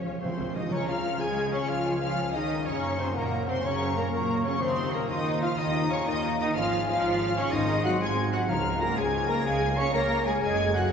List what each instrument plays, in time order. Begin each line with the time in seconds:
Already playing: french horn section F3, harp F3 G#3 G#4 F5, cello section C#4, violin section C#5
0.02 timpani C#3, harp F4, viola section C#5 F5
0.06 double bass section C#2
0.11 timpani C#3
0.18 timpani C#3, clarinet C5, viola section C#5, violin section C6
0.22 double bass section C#2, cello section C3, timpani C#3, viola section C4 F5, french horn section C4, violin section C5
0.34 timpani C#3
0.39 double bass section C#2, timpani C#3, harp G#4, viola section C#5 F5
0.49 timpani C#3
0.54 double bass section C#2, timpani C#3, cello section D#3, harp C#4, viola section D#4 C#5 F5, french horn section D#4, clarinet D#5, violin section D#5 D#6
0.64 timpani C#3
0.70 double bass section C#2, timpani C#3, cello section C#3, harp C#3, trombone section C#3 C#4, viola section C#4, french horn section C#4, violin section C#5 C#6, clarinet C#5, flute section A#5
0.88 cello section F3, harp C#4, french horn section F4, viola section F4, clarinet F5, violin section F5 F6
1.04 harp F4
1.19 double bass section C#2, cello section G#3, french horn section G#4, viola section G#4, harp C#5, flute section G#5, clarinet G#5, violin section G#5 G#6
1.37 harp G#4
1.52 cello section C#3, viola section C#4, harp C#4, french horn section C#4, clarinet C#5, violin section C#5 C#6
1.68 double bass section C#2, cello section F3, harp G#3, french horn section F4, viola section F4, clarinet F5, violin section F5 F6
1.86 harp C#4
2.01 cello section F3, viola section F4, french horn section F4, harp F4, clarinet F5, violin section F5 F6
2.17 double bass section C#2, harp C#5
2.33 cello section D#3, viola section D#4, french horn section D#4, harp G#4, violin section D#5 D#6, clarinet D#5
2.50 harp C#4
2.66 double bass section F#2, harp F#2, trombone section A#2, cello section C#3, french horn section C#4, viola section C#4, clarinet C#5, violin section C#5 C#6, flute section A#5
2.82 harp A#3
2.98 cello section C3, french horn section C4, viola section C4, harp C#4, violin section C5 C6, clarinet C5
3.14 double bass section F#2, cello section A#2, french horn section A#3, viola section A#3, harp A#4, violin section A#4 A#5, clarinet A#4, flute section F#5
3.31 harp F#4
3.47 cello section C3, harp A#3, french horn section C4, viola section C4, violin section C5 C6, clarinet C5
3.63 double bass section F#2, harp C#3, cello section C#3, french horn section C#4, viola section C#4, violin section C#5 C#6, clarinet C#5, flute section A#5
3.80 harp A#3
3.95 cello section A#2, french horn section A#3, viola section A#3, harp C#4, violin section A#4 A#5, clarinet A#4
4.10 double bass section F#2, cello section A#2, french horn section A#3, viola section A#3, harp A#4, clarinet A#4, violin section A#4 A#5, flute section C#6
4.28 harp F#4
4.44 cello section C#3, harp A#3, viola section C#4, french horn section C#4, clarinet C#5, violin section C#5 C#6
4.60 double bass section D#2, cello section C3, harp D#3, french horn section C4, viola section C4, trombone section F4, violin section C5 C6, clarinet C5, flute section D#6
4.78 harp A#3
4.93 cello section A#2, viola section A#3, french horn section A#3, harp F4, violin section A#4 A#5, clarinet A#4
5.09 double bass section D#2, cello section D#3, viola section D#4, french horn section D#4, harp A#4, clarinet D#5, violin section D#5 D#6, flute section C6
5.26 harp F4
5.42 cello section F3, harp A#3, viola section F4, french horn section F4, clarinet F5, violin section F5 F6
5.58 double bass section D#2, cello section D#3, viola section D#4, harp D#4, french horn section D#4, violin section D#5 D#6, clarinet D#5, flute section A#5
5.75 harp A#3
5.90 cello section C#3, viola section C#4, french horn section C#4, harp F4, violin section C#5 C#6, clarinet C#5
6.06 double bass section D#2, cello section D#3, viola section D#4, french horn section D#4, harp A#4, violin section D#5 D#6, clarinet D#5
6.24 harp F4
6.39 cello section D#3, harp A#3, viola section D#4, french horn section D#4, violin section D#5 D#6, clarinet D#5
6.55 double bass section G#1, harp G#2, trombone section G#2 C#4, cello section F3, viola section F4, french horn section F4, violin section F5 F6, clarinet F5, flute section G#5
6.72 harp G#3
6.88 cello section F3, viola section F4, french horn section F4, harp G#4, violin section F5 F6, clarinet F5
7.04 double bass section G#1, harp C#5, flute section F5
7.20 harp G#4
7.36 cello section C#3, harp G#3, french horn section C#4, viola section C#4, violin section C#5 C#6, clarinet C#5
7.52 double bass section G#1, harp G#2, timpani G#2, cello section D#3, trombone section C4, viola section D#4, french horn section D#4, clarinet D#5, violin section D#5 D#6, flute section C6
7.69 harp G#3
7.84 cello section F#3, viola section F#4, french horn section F#4, harp G#4, clarinet F#5, violin section F#5 F#6
8.01 double bass section G#1, cello section G#3, french horn section G#4, viola section G#4, harp C5, clarinet G#5, violin section G#5 G#6
8.17 harp G#4
8.32 cello section F#3, harp G#3, viola section F#4, french horn section F#4, clarinet F#5, violin section F#5 F#6
8.49 double bass section C#2, harp C#3, timpani C#3, cello section F3, trombone section C#4, viola section F4, french horn section F4, clarinet F5, violin section F5 F6, flute section A#5
8.66 harp G#3
8.81 cello section A#3, harp G#4, viola section A#4, french horn section A#4, clarinet A#5, violin section A#5 A#6
8.97 double bass section C#2, cello section G#3, viola section G#4, french horn section G#4, harp C#5, clarinet G#5, violin section G#5 G#6, flute section G#5
9.14 harp G#4
9.29 harp G#3, cello section A#3, french horn section A#4, viola section A#4, clarinet A#5, violin section A#5 A#6
9.45 double bass section C#2, cello section G#3, harp C#4, french horn section G#4, viola section G#4, flute section F5, clarinet G#5, violin section G#5 G#6
9.62 harp G#3
9.77 cello section C#4, harp G#4, french horn section C#5, viola section C#5, clarinet C#6, violin section C#6 C#7
9.93 double bass section C#2, cello section A#3, french horn section A#4, viola section A#4, flute section C#5, harp C#5, clarinet A#5, violin section A#5 A#6
10.11 harp G#4
10.26 harp G#3, cello section G#3, french horn section G#4, viola section G#4, clarinet G#5, violin section G#5 G#6
10.41 double bass section F#1, harp F#2, trombone section C#3, cello section G#3, french horn section G#4, viola section G#4, flute section D#5, clarinet G#5, violin section G#5 G#6
10.59 harp A3
10.74 cello section F#3, french horn section F#4, viola section F#4, clarinet F#5, violin section F#5 F#6